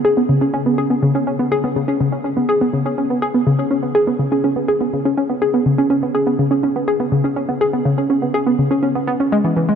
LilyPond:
\new Staff \with { instrumentName = "Synth arpeggio sound" } { \time 4/4 \key cis \dorian \tempo 4 = 123 gis'16 b16 cis16 cis'16 cis'16 b16 gis'16 b16 cis16 cis'16 cis'16 b16 gis'16 b16 cis16 cis'16 | cis16 cis'16 cis'16 b16 gis'16 b16 cis16 cis'16 cis'16 b16 gis'16 b16 cis16 cis'16 cis'16 b16 | gis'16 b16 cis16 cis'16 cis'16 b16 gis'16 b16 cis16 cis'16 cis'16 b16 gis'16 b16 cis16 cis'16 | cis'16 b16 gis'16 b16 cis16 cis'16 cis'16 b16 gis'16 b16 cis16 cis'16 cis'16 b16 gis'16 b16 |
cis16 cis'16 cis'16 b16 gis'16 b16 cis16 cis'16 cis'16 b16 b16 cis'16 gis16 e16 e16 gis16 | }